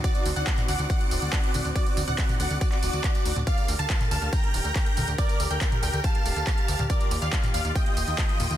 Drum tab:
HH |xxoxxxoxxxoxxxox|xxoxxxoxxxoxxxox|xxoxxxoxxxoxxxox|xxoxxxoxxxoxxxox|
TB |xxxxxxxxx-xxx-xx|xxxxxxxxx-xxxxxx|xxxxxxxxx-xxx-xx|xxxxxxxxx-xxx-xx|
CP |----xx------x---|----x----x--x---|----xx------x---|----x-------x---|
T2 |-----o--------o-|---o-o---------o|-----o--------o-|-----o---------o|
BD |o---o---o---o---|o---o---o---o---|o---o---o---o---|o---o---o---o---|

HH |xxoxxxoxxxoxxxox|
TB |xxxxxxxxx-xxx-xx|
CP |----xx------x---|
T2 |-----o--------o-|
BD |o---o---o---o---|